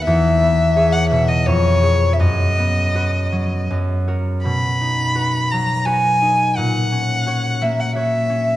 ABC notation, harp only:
X:1
M:3/4
L:1/8
Q:1/4=85
K:B
V:1 name="Harp"
[E,,B,B] B, [Gc] B,, ^E,, [Gc] | F,, B, [FB] F, F,, [FA] | B,, D [FB] F, [FB] D | A,, C [Fc] A, [Fc] C |]